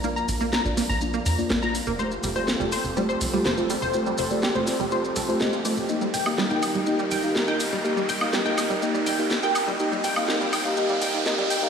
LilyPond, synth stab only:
\new Staff \with { instrumentName = "Synth stab" } { \time 4/4 \key f \mixolydian \tempo 4 = 123 <bes d' f' d''>8. <bes d' f' f''>16 r16 <bes d' f' d''>8 r16 <bes d' f' d''>8. <bes d' f' d''>16 r16 <bes d' f' d''>8. | <a f' g' c''>8. <a f' g' d''>16 r16 <a f' g' c''>8 r16 <a f' g' c''>8. <a f' g' c''>16 r16 <a f' g' c''>8. | <a f' g' c''>8. <a f' g' d''>16 r16 <a f' g' c''>8 r16 <a f' g' c''>8. <a f' g' c''>16 <a f' g' ees''>8 <a f' g' c''>8 | <bes ees' g' ees''>8. <bes ees' g' f''>16 r16 <bes ees' g' ees''>8 r16 <bes ees' g' ees''>8. <bes ees' g' f''>16 r16 <bes ees' g' ees''>8 r16 |
<bes ees' g' ees''>8. <bes ees' g' f''>16 r16 <bes ees' g' ees''>8 r16 <bes ees' g' ees''>8. <bes ees' g' f''>16 r16 <bes ees' g' ees''>8 r16 | <bes ees' g' ees''>8. <bes ees' g' f''>16 <bes ees' g' ees''>8. <bes ees' g' f''>16 <bes ees' g' ees''>8. <bes ees' g' f''>16 <bes ees' g' ees''>8. <bes ees' g' f''>16 | }